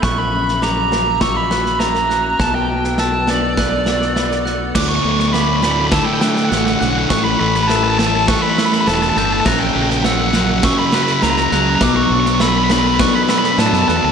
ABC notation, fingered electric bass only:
X:1
M:4/4
L:1/16
Q:1/4=102
K:D
V:1 name="Fingered electric bass" clef=bass
^A,,,16 | B,,,16 | D,,2 D,,8 z2 A,,,2 B,,,2 | A,,,2 A,,,8 z2 E,,,2 G,,,2 |
^A,,,2 A,,,8 z2 C,,2 C,,2 | B,,,2 B,,,8 z2 A,, F,, E,, D,, |]